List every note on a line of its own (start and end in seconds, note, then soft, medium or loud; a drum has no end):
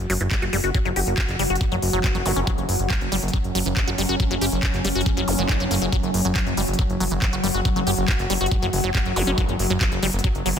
0.00 10.59 F#3 medium
0.00 2.49 F#4 medium
0.10 0.17 F#1 loud
0.10 0.14 F#3 loud
0.10 open hi-hat loud
0.21 0.28 F#1 medium
0.21 0.23 E3 medium
0.21 closed hi-hat medium
0.31 0.36 G3 medium
0.31 kick loud
0.31 clap loud
0.31 closed hi-hat medium
0.42 0.49 F#1 medium
0.42 0.45 F#4 loud
0.42 closed hi-hat medium
0.53 0.60 F#1 loud
0.53 0.57 G3 loud
0.53 open hi-hat loud
0.64 0.71 F#1 medium
0.64 0.70 F#4 medium
0.64 closed hi-hat medium
0.74 0.79 F#3 medium
0.74 kick loud
0.74 closed hi-hat medium
0.85 0.92 F#1 medium
0.85 0.90 F#3 loud
0.85 closed hi-hat medium
0.96 1.03 F#1 loud
0.96 1.00 G4 medium
0.96 open hi-hat loud
1.07 1.14 F#1 medium
1.07 closed hi-hat medium
1.18 kick loud
1.18 clap loud
1.18 closed hi-hat medium
1.29 1.36 F#1 medium
1.29 clap soft
1.29 closed hi-hat medium
1.39 1.46 F#1 loud
1.39 1.44 G3 loud
1.39 open hi-hat loud
1.50 1.57 F#1 medium
1.50 1.56 F#4 medium
1.50 closed hi-hat soft
1.55 closed hi-hat medium
1.61 kick loud
1.61 closed hi-hat medium
1.72 1.79 F#1 medium
1.72 1.76 F#3 loud
1.72 closed hi-hat medium
1.82 1.90 F#1 loud
1.82 open hi-hat loud
1.93 2.00 F#1 medium
1.93 2.00 F#3 loud
1.93 closed hi-hat medium
2.04 2.08 G3 medium
2.04 kick loud
2.04 clap loud
2.04 closed hi-hat medium
2.15 2.22 F#1 medium
2.15 2.17 F#3 loud
2.15 closed hi-hat medium
2.26 2.33 F#1 loud
2.26 2.32 F#3 medium
2.26 open hi-hat loud
2.26 zap medium
2.36 2.44 F#1 medium
2.36 2.41 C#4 medium
2.36 closed hi-hat medium
2.47 2.51 F#3 loud
2.47 5.95 C#4 medium
2.47 kick loud
2.47 closed hi-hat medium
2.58 2.65 F#1 medium
2.58 closed hi-hat medium
2.69 2.76 F#1 loud
2.69 open hi-hat loud
2.80 2.87 F#1 medium
2.80 closed hi-hat medium
2.90 2.93 F#4 loud
2.90 kick loud
2.90 clap loud
2.90 closed hi-hat medium
3.01 3.08 F#1 medium
3.01 closed hi-hat medium
3.12 3.19 F#1 loud
3.12 3.16 G3 loud
3.12 open hi-hat loud
3.23 3.30 F#1 medium
3.23 closed hi-hat soft
3.28 closed hi-hat medium
3.33 3.38 F#3 medium
3.33 kick loud
3.33 closed hi-hat medium
3.44 3.51 F#1 medium
3.44 closed hi-hat medium
3.55 3.62 F#1 loud
3.55 3.59 F#3 loud
3.55 open hi-hat loud
3.66 3.73 F#1 loud
3.66 3.68 E3 medium
3.66 closed hi-hat medium
3.77 3.81 G3 medium
3.77 kick loud
3.77 clap loud
3.77 closed hi-hat medium
3.87 3.95 F#1 medium
3.87 3.90 F#4 loud
3.87 closed hi-hat medium
3.98 4.05 F#1 loud
3.98 4.03 G3 loud
3.98 open hi-hat loud
4.09 4.16 F#1 medium
4.09 4.15 F#4 medium
4.09 closed hi-hat medium
4.20 4.24 F#3 medium
4.20 kick loud
4.20 closed hi-hat medium
4.31 4.38 F#1 medium
4.31 4.35 F#3 loud
4.31 closed hi-hat medium
4.41 4.49 F#1 loud
4.41 4.46 G4 medium
4.41 open hi-hat loud
4.52 4.59 F#1 medium
4.52 closed hi-hat soft
4.63 kick loud
4.63 clap loud
4.63 closed hi-hat medium
4.74 4.81 F#1 medium
4.74 clap soft
4.74 closed hi-hat soft
4.85 4.92 F#1 loud
4.85 4.89 G3 loud
4.85 open hi-hat loud
4.95 5.03 F#1 medium
4.95 5.02 F#4 medium
4.95 closed hi-hat soft
5.01 closed hi-hat medium
5.06 kick loud
5.06 closed hi-hat medium
5.17 5.24 F#1 medium
5.17 5.21 F#3 loud
5.17 closed hi-hat medium
5.28 5.35 F#1 loud
5.28 open hi-hat loud
5.28 zap medium
5.39 5.46 F#1 medium
5.39 5.43 F#3 medium
5.39 closed hi-hat medium
5.49 5.56 C#4 medium
5.49 kick loud
5.49 clap loud
5.49 closed hi-hat medium
5.60 5.67 F#1 medium
5.60 5.64 C#4 medium
5.60 closed hi-hat medium
5.71 5.78 F#1 loud
5.71 5.75 A#3 medium
5.71 open hi-hat loud
5.82 5.89 F#1 medium
5.82 5.86 F#3 medium
5.82 closed hi-hat medium
5.92 5.97 F#3 loud
5.92 9.40 F#4 medium
5.92 kick loud
5.92 closed hi-hat medium
6.03 6.10 F#1 medium
6.03 closed hi-hat medium
6.14 6.21 F#1 loud
6.14 open hi-hat loud
6.25 6.32 F#1 medium
6.25 6.27 F#3 loud
6.25 closed hi-hat medium
6.36 6.38 F#4 loud
6.36 kick loud
6.36 clap loud
6.36 closed hi-hat medium
6.46 6.54 F#1 medium
6.46 closed hi-hat medium
6.57 6.64 F#1 loud
6.57 6.62 G3 loud
6.57 open hi-hat loud
6.68 6.75 F#1 medium
6.68 closed hi-hat soft
6.73 closed hi-hat medium
6.79 6.83 F#3 medium
6.79 kick loud
6.90 6.97 F#1 medium
6.90 closed hi-hat medium
7.00 7.08 F#1 loud
7.00 7.05 F#3 loud
7.00 open hi-hat loud
7.11 7.18 F#1 medium
7.11 7.14 E3 medium
7.11 closed hi-hat medium
7.22 7.26 G3 medium
7.22 kick loud
7.22 clap loud
7.22 closed hi-hat medium
7.33 7.40 F#1 medium
7.33 7.35 F#4 loud
7.33 closed hi-hat medium
7.44 7.51 F#1 loud
7.44 7.48 G3 loud
7.44 open hi-hat loud
7.54 7.62 F#1 medium
7.54 7.61 F#4 medium
7.54 closed hi-hat medium
7.65 7.69 F#3 medium
7.65 kick loud
7.65 closed hi-hat medium
7.76 7.83 F#1 medium
7.76 7.80 F#3 loud
7.76 closed hi-hat medium
7.87 7.94 F#1 loud
7.87 7.91 G4 medium
7.87 open hi-hat loud
7.97 8.05 F#1 medium
7.97 closed hi-hat medium
8.08 kick loud
8.08 clap loud
8.08 closed hi-hat medium
8.19 8.26 F#1 medium
8.19 clap soft
8.19 closed hi-hat medium
8.30 8.37 F#1 loud
8.30 8.34 G3 loud
8.30 open hi-hat loud
8.41 8.48 F#1 medium
8.41 8.47 F#4 medium
8.41 closed hi-hat soft
8.46 closed hi-hat medium
8.51 kick loud
8.51 closed hi-hat medium
8.62 8.69 F#1 medium
8.62 8.67 F#3 loud
8.62 closed hi-hat medium
8.73 8.80 F#1 loud
8.73 open hi-hat loud
8.84 8.91 F#1 medium
8.84 8.90 F#3 loud
8.95 8.99 G3 medium
8.95 kick loud
8.95 clap loud
8.95 closed hi-hat medium
9.05 9.13 F#1 medium
9.05 closed hi-hat medium
9.16 9.23 F#1 loud
9.16 9.23 F#3 medium
9.16 open hi-hat loud
9.16 zap medium
9.27 9.34 F#1 medium
9.27 9.31 C#4 medium
9.27 closed hi-hat medium
9.38 9.42 F#3 loud
9.38 10.59 B3 medium
9.38 kick loud
9.38 closed hi-hat medium
9.49 9.56 F#1 medium
9.49 closed hi-hat medium
9.59 9.67 F#1 loud
9.59 open hi-hat loud
9.70 9.77 F#1 medium
9.70 9.73 F#3 loud
9.70 closed hi-hat medium
9.81 9.84 F#4 loud
9.81 kick loud
9.81 clap loud
9.81 closed hi-hat medium
9.92 9.99 F#1 medium
9.92 closed hi-hat medium
10.03 10.10 F#1 loud
10.03 10.07 G3 loud
10.03 open hi-hat loud
10.13 10.20 F#1 medium
10.13 closed hi-hat soft
10.19 closed hi-hat medium
10.24 10.28 F#3 medium
10.24 kick loud
10.24 closed hi-hat medium
10.35 10.42 F#1 medium
10.35 closed hi-hat medium
10.46 10.53 F#1 loud
10.46 10.50 F#3 loud
10.46 open hi-hat loud